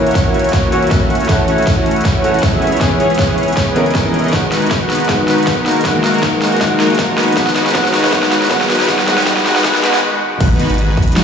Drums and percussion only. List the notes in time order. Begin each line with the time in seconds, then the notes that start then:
0.07 closed hi-hat
0.11 closed hi-hat
0.15 kick, snare, closed hi-hat
0.34 closed hi-hat
0.39 closed hi-hat
0.44 closed hi-hat
0.49 closed hi-hat
0.53 kick, snare, closed hi-hat
0.72 closed hi-hat
0.83 closed hi-hat
0.87 closed hi-hat
0.91 kick, snare, closed hi-hat
1.10 closed hi-hat
1.15 closed hi-hat
1.20 closed hi-hat
1.25 closed hi-hat
1.29 kick, snare, closed hi-hat
1.48 closed hi-hat
1.58 closed hi-hat
1.63 closed hi-hat
1.67 kick, snare, closed hi-hat
1.86 closed hi-hat
1.91 closed hi-hat
1.96 closed hi-hat
2.01 closed hi-hat
2.05 kick, snare, closed hi-hat
2.24 closed hi-hat
2.34 closed hi-hat
2.39 closed hi-hat
2.43 kick, snare, closed hi-hat
2.62 closed hi-hat
2.67 closed hi-hat
2.72 closed hi-hat
2.77 closed hi-hat
2.81 kick, snare, closed hi-hat
3.00 closed hi-hat
3.10 closed hi-hat
3.14 closed hi-hat
3.19 kick, snare, closed hi-hat
3.38 closed hi-hat
3.43 closed hi-hat
3.48 closed hi-hat
3.53 closed hi-hat
3.57 kick, snare, closed hi-hat
3.76 closed hi-hat
3.86 closed hi-hat
3.90 closed hi-hat
3.95 kick, snare, closed hi-hat
4.14 closed hi-hat
4.19 closed hi-hat
4.24 closed hi-hat
4.28 closed hi-hat
4.33 kick, snare, closed hi-hat
4.52 snare, closed hi-hat
4.62 closed hi-hat
4.66 closed hi-hat
4.71 kick, snare, closed hi-hat
4.90 snare, closed hi-hat
4.95 closed hi-hat
5.00 closed hi-hat
5.05 closed hi-hat
5.09 kick, snare, closed hi-hat
5.28 snare, closed hi-hat
5.38 closed hi-hat
5.43 closed hi-hat
5.47 kick, snare, closed hi-hat
5.66 snare, closed hi-hat
5.71 closed hi-hat
5.76 closed hi-hat
5.81 closed hi-hat
5.85 kick, snare, closed hi-hat
6.04 snare, closed hi-hat
6.14 closed hi-hat
6.18 closed hi-hat
6.23 kick, snare, closed hi-hat
6.42 snare, closed hi-hat
6.47 closed hi-hat
6.52 closed hi-hat
6.56 closed hi-hat
6.61 kick, snare, closed hi-hat
6.80 snare, closed hi-hat
6.90 closed hi-hat
6.95 closed hi-hat
6.99 kick, snare, closed hi-hat
7.18 snare, closed hi-hat
7.23 closed hi-hat
7.28 closed hi-hat
7.32 closed hi-hat
7.37 kick, snare, closed hi-hat
7.47 snare
7.56 snare, closed hi-hat
7.66 snare, closed hi-hat
7.70 closed hi-hat
7.75 kick, snare, closed hi-hat
7.85 snare
7.94 snare, closed hi-hat
7.99 closed hi-hat
8.04 snare, closed hi-hat
8.08 closed hi-hat
8.12 kick, snare, closed hi-hat
8.23 snare
8.32 snare, closed hi-hat
8.42 snare, closed hi-hat
8.46 closed hi-hat
8.51 kick, snare, closed hi-hat
8.61 snare
8.70 snare, closed hi-hat
8.75 closed hi-hat
8.80 snare, closed hi-hat
8.84 closed hi-hat
8.89 kick, snare, closed hi-hat
8.99 snare
9.08 snare, closed hi-hat
9.18 snare, closed hi-hat
9.22 closed hi-hat
9.27 kick, snare, closed hi-hat
9.37 snare
9.46 snare, closed hi-hat
9.51 closed hi-hat
9.56 snare, closed hi-hat
9.60 closed hi-hat
9.64 kick, snare, closed hi-hat
9.75 snare
9.83 snare, closed hi-hat
9.94 snare, closed hi-hat
9.98 closed hi-hat
10.41 kick, closed hi-hat, crash
10.59 closed hi-hat
10.70 closed hi-hat
10.74 closed hi-hat
10.78 closed hi-hat
10.97 kick, closed hi-hat
11.02 closed hi-hat
11.08 closed hi-hat
11.12 closed hi-hat
11.16 snare, closed hi-hat